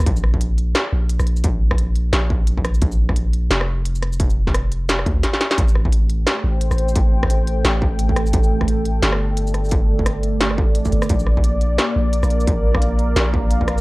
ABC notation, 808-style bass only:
X:1
M:4/4
L:1/16
Q:"Swing 16ths" 1/4=174
K:Bblyd
V:1 name="808-style bass" clef=bass
B,,,8 z2 B,,,3 B,,,3 | B,,,8 B,,,8 | B,,,8 F,,,8- | F,,,8- F,,,2 D,,2 z4 |
A,,,8 z2 A,,,3 A,,,3 | A,,,8 A,,,8 | A,,,8 G,,,8- | G,,,8- G,,,2 A,,,4 G,,,2 |
B,,,8 z2 B,,,3 B,,,3 | B,,,8 B,,,8 |]